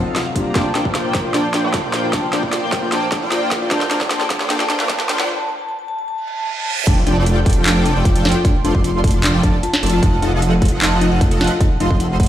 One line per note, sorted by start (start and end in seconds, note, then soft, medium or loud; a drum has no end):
0.00 0.32 C3 medium
0.00 0.37 F#3 loud
0.00 0.35 C4 medium
0.00 0.33 D#4 medium
0.00 0.37 D#4 medium
0.00 0.36 F4 medium
0.00 0.33 A4 medium
0.00 0.37 A4 loud
0.00 0.34 C5 medium
0.00 0.12 F#5 medium
0.06 0.19 F3 medium
0.06 0.19 F4 medium
0.06 0.19 A4 medium
0.06 0.19 D#5 medium
0.06 0.19 F5 medium
0.16 snare medium
0.16 closed hi-hat medium
0.26 0.32 F5 medium
0.35 3.68 A#2 medium
0.35 5.25 F3 medium
0.35 0.53 G3 medium
0.35 0.53 A#3 medium
0.35 0.53 C4 medium
0.35 3.68 D4 medium
0.35 0.53 D4 medium
0.35 0.53 F4 medium
0.35 0.54 G4 medium
0.35 3.68 C5 medium
0.35 0.53 C5 medium
0.35 0.53 D5 medium
0.35 0.42 F5 medium
0.35 5.25 G5 medium
0.35 0.53 A#5 medium
0.35 kick medium
0.35 closed hi-hat medium
0.55 0.68 A#3 medium
0.55 0.62 D4 medium
0.55 0.68 F4 medium
0.55 0.68 C5 medium
0.55 0.68 D5 medium
0.55 0.68 G5 medium
0.55 0.62 A5 medium
0.55 kick loud
0.55 snare medium
0.55 closed hi-hat medium
0.55 riser medium
0.66 0.72 A5 medium
0.75 0.84 A#3 medium
0.75 0.80 D4 medium
0.75 0.84 F4 medium
0.75 0.84 C5 medium
0.75 0.84 D5 medium
0.75 0.84 G5 medium
0.75 snare medium
0.75 closed hi-hat medium
0.85 1.32 A#3 medium
0.85 1.32 F4 medium
0.85 1.32 C5 medium
0.85 0.88 D5 medium
0.85 1.32 D5 medium
0.85 1.32 G5 loud
0.85 kick medium
0.95 0.99 F4 medium
0.95 snare medium
0.95 closed hi-hat medium
1.15 1.19 A#4 medium
1.15 kick loud
1.15 snare medium
1.15 closed hi-hat medium
1.25 1.27 F4 medium
1.34 1.47 A#3 medium
1.34 1.41 D4 loud
1.34 1.47 F4 medium
1.34 1.47 C5 medium
1.34 1.47 D5 medium
1.34 1.47 G5 loud
1.34 1.41 A5 medium
1.34 snare medium
1.34 closed hi-hat medium
1.44 1.51 A5 medium
1.54 1.63 A#3 medium
1.54 1.58 D4 medium
1.54 1.63 F4 medium
1.54 1.63 C5 medium
1.54 1.63 D5 medium
1.54 1.63 G5 medium
1.54 snare medium
1.54 closed hi-hat medium
1.64 2.11 A#3 medium
1.64 2.11 F4 medium
1.64 2.11 C5 medium
1.64 1.67 D5 medium
1.64 2.11 D5 medium
1.64 2.11 G5 loud
1.74 1.78 F4 medium
1.74 kick loud
1.74 snare medium
1.74 closed hi-hat medium
1.93 1.98 A#4 medium
1.93 snare medium
1.93 closed hi-hat medium
2.04 2.06 F4 loud
2.13 2.26 A#3 medium
2.13 2.20 D4 loud
2.13 2.26 F4 medium
2.13 2.26 C5 medium
2.13 2.26 D5 medium
2.13 2.26 G5 loud
2.13 2.20 A5 medium
2.13 kick loud
2.13 snare medium
2.13 closed hi-hat medium
2.24 2.30 A5 medium
2.33 2.42 A#3 medium
2.33 2.37 D4 loud
2.33 2.42 F4 medium
2.33 2.42 C5 medium
2.33 2.42 D5 medium
2.33 2.42 G5 medium
2.33 snare medium
2.33 closed hi-hat medium
2.43 2.90 A#3 loud
2.43 2.90 F4 medium
2.43 2.90 C5 medium
2.43 2.46 D5 medium
2.43 2.90 D5 medium
2.43 2.90 G5 loud
2.43 kick medium
2.53 2.57 F4 medium
2.53 snare medium
2.53 closed hi-hat medium
2.72 2.77 A#4 medium
2.72 kick loud
2.72 snare medium
2.72 closed hi-hat medium
2.83 2.85 F4 loud
2.92 3.05 A#3 medium
2.92 2.99 D4 loud
2.92 3.05 F4 medium
2.92 3.05 C5 medium
2.92 3.05 D5 medium
2.92 3.05 G5 loud
2.92 2.99 A5 medium
2.92 snare medium
2.92 closed hi-hat medium
3.02 3.08 A5 medium
3.12 3.21 A#3 medium
3.12 3.16 D4 loud
3.12 3.21 F4 medium
3.12 3.21 C5 medium
3.12 3.21 D5 medium
3.12 3.21 G5 medium
3.12 kick loud
3.12 snare medium
3.12 closed hi-hat medium
3.22 3.69 A#3 medium
3.22 3.69 F4 medium
3.22 3.69 C5 medium
3.22 3.25 D5 medium
3.22 3.69 D5 medium
3.22 3.69 G5 loud
3.32 3.36 F4 medium
3.32 snare medium
3.32 closed hi-hat medium
3.51 3.56 A#4 medium
3.51 kick medium
3.51 snare medium
3.51 closed hi-hat medium
3.62 3.64 F4 loud
3.71 5.27 G2 medium
3.71 3.84 A#3 medium
3.71 5.27 A#3 medium
3.71 3.78 D4 loud
3.71 3.84 F4 medium
3.71 5.27 A4 medium
3.71 3.84 C5 medium
3.71 3.84 D5 medium
3.71 3.84 G5 medium
3.71 3.78 A5 medium
3.71 kick loud
3.71 snare medium
3.71 closed hi-hat medium
3.81 snare medium
3.91 4.00 A#3 medium
3.91 3.95 D4 loud
3.91 4.00 F4 medium
3.91 4.00 C5 medium
3.91 4.00 D5 medium
3.91 4.00 G5 medium
3.91 snare medium
3.91 closed hi-hat medium
4.01 4.09 A#3 loud
4.01 4.09 F4 medium
4.01 4.04 D5 medium
4.01 4.09 D5 medium
4.01 4.09 G5 loud
4.01 kick medium
4.01 snare medium
4.11 4.23 A#3 medium
4.11 4.17 D4 medium
4.11 4.23 F4 medium
4.11 4.23 C5 medium
4.11 4.23 D5 medium
4.11 4.23 G5 loud
4.11 4.17 A5 medium
4.11 snare loud
4.11 closed hi-hat medium
4.21 4.27 A5 medium
4.21 snare medium
4.30 4.39 A#3 medium
4.30 4.35 D4 loud
4.30 4.39 F4 medium
4.30 4.39 C5 medium
4.30 4.39 D5 medium
4.30 4.39 G5 loud
4.30 kick medium
4.30 snare medium
4.30 closed hi-hat medium
4.40 4.49 A#3 loud
4.40 4.49 F4 medium
4.40 4.49 C5 medium
4.40 4.43 D5 medium
4.40 4.49 D5 medium
4.40 4.49 G5 loud
4.40 snare medium
4.50 4.63 A#3 medium
4.50 4.57 D4 loud
4.50 4.63 F4 medium
4.50 4.63 C5 medium
4.50 4.63 D5 medium
4.50 4.63 G5 loud
4.50 4.57 A5 medium
4.50 snare loud
4.50 closed hi-hat medium
4.60 4.66 A5 medium
4.60 snare medium
4.70 4.78 A#3 medium
4.70 4.74 D4 loud
4.70 4.78 F4 medium
4.70 4.78 C5 medium
4.70 4.78 D5 medium
4.70 4.79 G5 medium
4.70 snare medium
4.70 closed hi-hat medium
4.80 4.88 A#3 loud
4.80 4.88 F4 medium
4.80 4.88 C5 medium
4.80 4.82 D5 medium
4.80 4.88 D5 medium
4.80 4.88 G5 loud
4.80 snare medium
4.89 5.02 A#3 medium
4.89 4.96 D4 loud
4.89 5.02 F4 medium
4.89 5.02 C5 medium
4.89 5.02 D5 medium
4.89 5.02 G5 loud
4.89 4.96 A5 medium
4.89 kick loud
4.89 snare loud
4.89 closed hi-hat medium
5.00 5.06 A5 medium
5.00 snare medium
5.09 5.18 A#3 medium
5.09 5.14 D4 loud
5.09 5.18 F4 medium
5.09 5.18 C5 medium
5.09 5.18 D5 medium
5.09 5.18 G5 loud
5.09 snare loud
5.09 closed hi-hat medium
5.19 5.28 A#3 medium
5.19 5.28 F4 medium
5.19 5.28 C5 medium
5.19 5.22 D5 medium
5.19 5.28 D5 medium
5.19 5.28 G5 loud
5.19 snare medium
5.29 5.36 A5 medium
5.39 5.45 A5 medium
5.49 5.55 A5 medium
5.59 5.65 A5 medium
5.69 5.75 A5 loud
5.79 5.85 A5 medium
5.88 5.95 A5 medium
5.99 6.05 A5 medium
6.08 6.15 A5 medium
6.08 reverse cymbal medium
6.18 6.24 A5 medium
6.28 6.34 A5 medium
6.38 6.44 A5 medium
6.48 6.54 A5 medium
6.58 6.64 A5 medium
6.67 6.74 A5 medium
6.87 7.05 F1 loud
6.87 7.00 F3 medium
6.87 6.94 D4 loud
6.87 7.00 F4 medium
6.87 7.00 A4 medium
6.87 7.00 D5 medium
6.87 7.00 G5 loud
6.87 6.94 A5 medium
6.87 kick loud
6.87 closed hi-hat medium
6.87 crash loud
7.07 7.15 F1 loud
7.07 7.15 F3 medium
7.07 7.11 D4 loud
7.07 7.15 F4 medium
7.07 7.15 A4 medium
7.07 7.15 D5 medium
7.07 7.15 G5 medium
7.07 closed hi-hat medium
7.17 7.64 F1 loud
7.17 7.64 F3 loud
7.17 7.64 F4 medium
7.17 7.64 A4 medium
7.17 7.19 D5 medium
7.17 7.64 D5 medium
7.17 7.64 G5 loud
7.26 7.31 F4 medium
7.26 closed hi-hat medium
7.46 7.51 A4 medium
7.46 kick loud
7.46 closed hi-hat soft
7.50 closed hi-hat medium
7.53 7.59 F4 medium
7.53 closed hi-hat medium
7.66 7.94 F1 medium
7.66 7.93 F3 medium
7.66 7.73 D4 loud
7.66 7.93 F4 medium
7.66 7.93 A4 medium
7.66 7.93 D5 medium
7.66 7.93 G5 loud
7.66 7.72 A5 medium
7.66 clap loud
7.66 closed hi-hat medium
7.76 7.82 A5 medium
7.86 7.90 D4 loud
7.86 closed hi-hat medium
7.96 8.13 F1 loud
7.96 8.13 F3 medium
7.96 8.13 F4 medium
7.96 8.13 A4 medium
7.96 7.98 D5 medium
7.96 8.13 D5 medium
7.96 8.23 G5 medium
7.96 8.13 G5 medium
8.05 8.10 F4 medium
8.05 kick loud
8.05 closed hi-hat medium
8.15 8.34 F1 loud
8.15 8.36 F3 loud
8.15 8.36 F4 loud
8.15 8.36 A4 medium
8.15 8.36 D5 medium
8.15 8.36 G5 loud
8.15 closed hi-hat medium
8.25 8.30 A4 medium
8.25 8.32 C6 medium
8.25 snare medium
8.25 closed hi-hat medium
8.29 closed hi-hat medium
8.32 8.38 F4 loud
8.32 8.41 C6 medium
8.32 closed hi-hat medium
8.45 8.51 D4 loud
8.45 8.51 C6 medium
8.45 kick loud
8.45 closed hi-hat medium
8.55 8.61 C6 medium
8.64 8.73 F1 loud
8.64 8.72 F3 medium
8.64 8.69 D4 loud
8.64 8.72 F4 medium
8.64 8.72 A4 medium
8.64 8.72 D5 medium
8.64 8.72 C6 loud
8.64 closed hi-hat medium
8.75 9.32 F1 medium
8.75 9.32 F4 medium
8.75 9.32 A4 medium
8.75 8.77 D5 medium
8.75 9.32 D5 medium
8.75 9.32 C6 loud
8.75 kick medium
8.84 8.89 F4 medium
8.84 closed hi-hat medium
9.04 9.08 A4 medium
9.04 kick loud
9.04 closed hi-hat medium
9.07 closed hi-hat medium
9.11 9.17 F4 loud
9.11 closed hi-hat medium
9.24 9.30 D4 loud
9.24 9.30 C6 medium
9.24 clap loud
9.24 closed hi-hat medium
9.34 9.42 F1 loud
9.34 9.42 F3 medium
9.34 9.42 F4 medium
9.34 9.42 A4 medium
9.34 9.42 D5 medium
9.34 9.42 G5 medium
9.34 9.40 C6 medium
9.43 9.54 F1 medium
9.43 9.56 F3 medium
9.43 9.48 D4 loud
9.43 9.56 F4 medium
9.43 9.56 A4 medium
9.43 9.56 D5 medium
9.43 9.56 A5 medium
9.43 9.99 A5 medium
9.43 kick loud
9.43 closed hi-hat medium
9.54 9.56 D5 medium
9.63 9.68 F4 medium
9.63 closed hi-hat medium
9.73 snare medium
9.73 closed hi-hat medium
9.83 10.01 F1 medium
9.83 10.00 F3 medium
9.83 10.00 F4 medium
9.83 9.87 A4 medium
9.83 10.00 A4 medium
9.83 10.00 D5 medium
9.83 10.00 A5 medium
9.83 closed hi-hat medium
9.86 closed hi-hat medium
9.90 9.96 F4 loud
9.90 closed hi-hat medium
10.03 10.21 F1 loud
10.03 10.16 F3 medium
10.03 10.09 D#4 loud
10.03 10.16 F4 medium
10.03 10.16 A4 medium
10.03 10.16 D#5 medium
10.03 10.16 F#5 loud
10.03 10.09 A5 medium
10.03 kick loud
10.03 closed hi-hat medium
10.13 10.19 A5 medium
10.22 10.31 F1 loud
10.22 10.31 F3 medium
10.22 10.27 D#4 loud
10.22 10.31 F4 medium
10.22 10.31 A4 medium
10.22 10.31 D#5 medium
10.22 10.31 F#5 medium
10.22 closed hi-hat medium
10.33 10.80 F1 loud
10.33 10.79 F3 loud
10.33 10.79 F4 medium
10.33 10.79 A4 medium
10.33 10.35 D#5 medium
10.33 10.79 D#5 medium
10.33 10.79 F#5 loud
10.42 10.47 F4 medium
10.42 closed hi-hat medium
10.62 10.66 A4 medium
10.62 kick loud
10.62 closed hi-hat soft
10.65 closed hi-hat medium
10.68 10.75 F4 loud
10.68 closed hi-hat medium
10.82 11.10 F1 loud
10.82 11.09 F3 medium
10.82 10.88 D#4 loud
10.82 11.09 F4 medium
10.82 11.09 A4 medium
10.82 11.09 D#5 medium
10.82 11.09 F#5 loud
10.82 10.88 A5 medium
10.82 clap loud
10.82 closed hi-hat medium
10.92 10.98 A5 medium
11.01 11.06 D#4 loud
11.01 closed hi-hat medium
11.12 11.29 F1 loud
11.12 11.29 F3 medium
11.12 11.29 F4 medium
11.12 11.29 A4 medium
11.12 11.14 D#5 medium
11.12 11.29 D#5 medium
11.12 11.39 F#5 medium
11.12 11.29 F#5 medium
11.21 11.26 F4 medium
11.21 kick loud
11.21 closed hi-hat medium
11.31 11.49 F1 loud
11.31 11.51 F3 loud
11.31 11.52 F4 medium
11.31 11.51 A4 medium
11.31 11.52 D#5 medium
11.31 11.51 F#5 loud
11.31 closed hi-hat medium
11.41 11.45 A4 medium
11.41 snare medium
11.41 closed hi-hat medium
11.44 closed hi-hat medium
11.47 11.54 F4 loud
11.47 closed hi-hat medium
11.61 11.67 D#4 loud
11.61 kick loud
11.61 closed hi-hat medium
11.80 11.88 F1 loud
11.80 11.88 F3 medium
11.80 11.85 D#4 loud
11.80 11.88 F4 medium
11.80 11.88 A4 medium
11.80 11.88 D#5 medium
11.80 11.98 F5 medium
11.80 11.88 C6 medium
11.80 closed hi-hat medium
11.91 12.28 F1 loud
11.91 12.28 F3 loud
11.91 12.28 F4 medium
11.91 12.28 A4 medium
11.91 11.93 D#5 medium
11.91 12.28 C6 loud
11.91 kick medium
12.00 12.05 F4 medium
12.00 12.16 F#5 loud
12.00 closed hi-hat medium
12.20 12.24 A4 medium
12.20 12.28 F#5 medium
12.20 kick loud
12.20 closed hi-hat soft
12.23 closed hi-hat medium